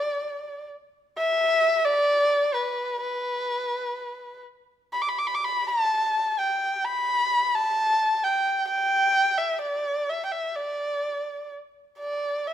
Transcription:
Already playing: D5
1.18 E5
1.85 D5
2.54 B4
3.01 B4
4.93 B5
5.02 D6
5.08 B5
5.19 D6
5.27 B5
5.35 D6
5.44 B5
5.67 A5
6.39 G5
6.85 B5
7.54 A5
8.24 G5
8.68 G5
9.37 E5
9.61 D5
10.09 E5
10.25 G5
10.32 E5
10.56 D5
11.99 D5
12.47 E5

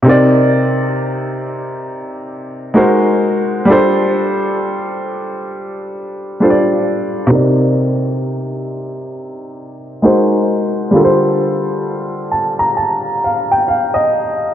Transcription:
0.02 C3 C4 D#4
0.07 A#4 D5
2.74 G#3 D#4 F#4 A#4 C5
3.65 G3 D4 F4
3.71 A4 C5
6.40 G3 D4 F4 A4 C5
6.50 D5
7.27 C3 C4 D#4
7.32 A#4 D5
10.02 G#3 D#4 F#4 A#4 C5
10.91 D3 G3 F4
10.96 A4 A#4
11.04 C5
12.31 A5
12.59 A#5
12.77 A5
13.24 F5
13.51 G5
13.68 F5
13.94 D#5

